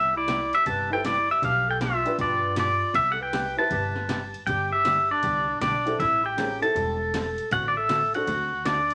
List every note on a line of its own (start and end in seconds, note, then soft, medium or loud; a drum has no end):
0.00 0.51 C2 medium
0.00 0.12 C3 medium
0.00 0.12 G3 medium
0.00 0.12 B3 medium
0.00 0.13 E4 medium
0.00 0.13 G4 medium
0.00 0.15 G4 medium
0.00 0.17 E5 medium
0.16 0.51 E4 medium
0.16 0.55 D5 medium
0.28 0.40 C3 medium
0.28 0.40 G3 medium
0.28 0.40 B3 medium
0.28 0.40 E4 medium
0.28 0.40 G4 medium
0.28 snare medium
0.28 hi-hat pedal medium
0.28 ride medium
0.53 0.66 G4 medium
0.53 0.66 E5 medium
0.53 ride soft
0.66 1.27 G1 medium
0.66 0.89 C3 medium
0.66 0.89 G3 medium
0.66 0.89 B3 medium
0.66 0.89 E4 medium
0.66 0.89 G4 medium
0.66 0.94 B4 medium
0.66 0.92 A5 loud
0.66 kick soft
0.66 ride medium
0.90 1.02 C4 medium
0.90 1.03 E4 medium
0.90 1.03 G4 medium
0.90 1.05 A4 medium
0.90 1.03 B4 medium
0.90 1.06 G5 medium
1.04 1.16 C3 medium
1.04 1.16 G3 medium
1.04 1.17 B3 medium
1.04 1.17 E4 medium
1.04 1.31 E4 medium
1.04 1.17 G4 medium
1.04 1.28 D5 medium
1.04 snare medium
1.04 hi-hat pedal medium
1.04 ride medium
1.29 1.44 G4 medium
1.29 1.43 E5 medium
1.42 2.03 B1 medium
1.42 1.65 B2 medium
1.42 1.65 F3 medium
1.42 1.65 B3 soft
1.42 1.65 D4 medium
1.42 1.65 G4 medium
1.42 1.70 G4 medium
1.42 1.65 B4 medium
1.42 1.69 F5 medium
1.42 kick soft
1.42 ride medium
1.68 1.80 A4 medium
1.68 1.81 G5 medium
1.81 1.92 B2 medium
1.81 1.92 F3 medium
1.81 1.93 B3 medium
1.81 1.93 D4 medium
1.81 2.16 F4 medium
1.81 1.93 G4 medium
1.81 1.93 B4 medium
1.81 2.17 E5 medium
1.81 snare medium
1.81 hi-hat pedal medium
1.81 ride medium
2.05 2.54 D4 medium
2.05 2.54 F4 medium
2.05 2.54 G4 medium
2.05 2.55 B4 medium
2.05 ride soft
2.18 2.79 G2 medium
2.18 2.41 B2 medium
2.18 2.41 F3 soft
2.18 2.41 B3 medium
2.18 2.41 D4 medium
2.18 2.54 F4 medium
2.18 2.41 G4 medium
2.18 2.41 B4 medium
2.18 2.58 D5 medium
2.18 kick soft
2.18 ride medium
2.56 2.68 B2 medium
2.56 2.68 F3 medium
2.56 2.68 B3 medium
2.56 2.69 D4 medium
2.56 2.92 F4 medium
2.56 2.69 G4 medium
2.56 2.69 B4 medium
2.56 2.94 D5 medium
2.56 snare medium
2.56 hi-hat pedal medium
2.56 ride medium
2.94 3.55 C2 medium
2.94 3.16 C3 medium
2.94 3.17 G3 medium
2.94 3.17 B3 medium
2.94 3.17 E4 medium
2.94 3.17 G4 medium
2.94 3.11 G4 medium
2.94 3.11 E5 medium
2.94 kick soft
2.94 ride medium
3.12 3.22 A4 medium
3.12 3.20 F#5 medium
3.20 3.58 B4 medium
3.20 3.58 G5 medium
3.33 3.45 C3 medium
3.33 3.45 G3 medium
3.33 3.45 B3 medium
3.33 3.45 E4 medium
3.33 3.45 G4 medium
3.33 snare medium
3.33 hi-hat pedal medium
3.33 ride medium
3.57 3.69 C4 medium
3.57 3.70 E4 medium
3.57 3.69 G4 medium
3.57 4.31 B4 medium
3.57 3.70 B4 medium
3.57 4.43 A5 loud
3.71 4.32 G1 medium
3.71 3.93 C3 medium
3.71 3.94 G3 medium
3.71 3.94 B3 medium
3.71 3.94 E4 medium
3.71 3.94 G4 medium
3.71 kick soft
3.71 ride medium
3.96 snare soft
4.08 4.20 C3 medium
4.08 4.21 G3 medium
4.08 4.21 B3 medium
4.08 4.21 E4 medium
4.08 4.21 G4 medium
4.08 snare medium
4.08 hi-hat pedal medium
4.08 ride medium
4.34 ride soft
4.46 5.08 G1 medium
4.46 4.70 D3 medium
4.46 4.70 G3 soft
4.46 4.70 B3 medium
4.46 4.70 D4 medium
4.46 4.71 G4 medium
4.46 4.70 G4 medium
4.46 4.72 G5 medium
4.46 kick soft
4.46 ride medium
4.72 5.08 G4 medium
4.72 5.11 E5 medium
4.85 4.97 D3 medium
4.85 4.97 G3 medium
4.85 4.97 B3 medium
4.85 4.98 D4 medium
4.85 4.98 G4 medium
4.85 snare medium
4.85 hi-hat pedal medium
4.85 ride medium
5.11 5.58 D4 medium
5.11 5.60 D5 medium
5.23 5.55 C2 medium
5.23 5.46 D3 soft
5.23 5.46 G3 medium
5.23 5.46 B3 medium
5.23 5.46 D4 medium
5.23 5.46 G4 medium
5.23 kick soft
5.23 ride medium
5.61 5.93 B1 medium
5.61 5.73 D3 medium
5.61 5.73 G3 medium
5.61 5.73 B3 medium
5.61 5.74 D4 medium
5.61 5.97 D4 medium
5.61 5.74 G4 medium
5.61 6.01 D5 medium
5.61 snare medium
5.61 hi-hat pedal medium
5.61 ride medium
5.85 5.98 C4 medium
5.85 5.98 E4 medium
5.85 5.98 G4 medium
5.85 5.98 A4 medium
5.85 ride soft
5.99 6.60 A1 medium
5.99 6.21 E3 medium
5.99 6.22 G3 medium
5.99 6.22 C4 medium
5.99 6.22 E4 medium
5.99 6.23 E4 medium
5.99 6.22 A4 medium
5.99 6.25 E5 medium
5.99 kick soft
5.99 ride medium
6.24 6.60 G4 medium
6.24 6.62 G5 medium
6.37 6.49 E3 medium
6.37 6.50 G3 medium
6.37 6.50 C4 medium
6.37 6.59 C#4 medium
6.37 6.50 E4 medium
6.37 6.60 F4 soft
6.37 6.60 G#4 medium
6.37 6.50 A4 medium
6.37 6.60 A#4 medium
6.37 snare medium
6.37 hi-hat pedal medium
6.37 ride medium
6.61 6.95 C4 medium
6.61 6.95 E4 medium
6.61 6.95 G4 medium
6.61 7.47 A4 medium
6.61 6.96 A4 medium
6.61 7.48 A5 medium
6.61 ride soft
6.75 7.36 E1 medium
6.75 6.98 E3 medium
6.75 6.98 G3 soft
6.75 6.98 C4 medium
6.75 6.98 E4 medium
6.75 6.98 A4 medium
6.75 kick soft
6.75 ride medium
7.14 7.26 E3 medium
7.14 7.26 G3 medium
7.14 7.26 C4 medium
7.14 7.26 E4 medium
7.14 7.26 A4 medium
7.14 snare medium
7.14 hi-hat pedal medium
7.14 ride medium
7.38 ride soft
7.51 8.12 A1 medium
7.51 7.74 D3 medium
7.51 7.74 A3 medium
7.51 7.74 C4 medium
7.51 7.66 F#4 medium
7.51 7.74 F#4 medium
7.51 7.75 A4 medium
7.51 7.68 F#5 medium
7.51 kick soft
7.51 ride medium
7.68 7.76 F#4 soft
7.68 7.77 D5 medium
7.77 8.12 A4 medium
7.77 8.15 E5 medium
7.89 8.01 D3 medium
7.89 8.02 A3 medium
7.89 8.02 C4 medium
7.89 8.02 F#4 medium
7.89 8.02 A4 medium
7.89 snare medium
7.89 hi-hat pedal medium
7.89 ride medium
8.14 8.26 C4 medium
8.14 8.27 D4 medium
8.14 8.63 F#4 medium
8.14 8.27 F#4 medium
8.14 8.27 A4 medium
8.14 8.68 F#5 medium
8.14 ride soft
8.27 8.88 D2 medium
8.27 8.50 D3 medium
8.27 8.50 A3 medium
8.27 8.50 C4 medium
8.27 8.50 F#4 medium
8.27 8.50 A4 medium
8.27 kick soft
8.27 ride medium
8.65 8.77 D3 medium
8.65 8.77 A3 medium
8.65 8.78 C4 medium
8.65 8.94 D4 medium
8.65 8.78 F#4 medium
8.65 8.78 A4 medium
8.65 8.94 D5 medium
8.65 snare medium
8.65 hi-hat pedal medium
8.65 ride medium
8.90 ride soft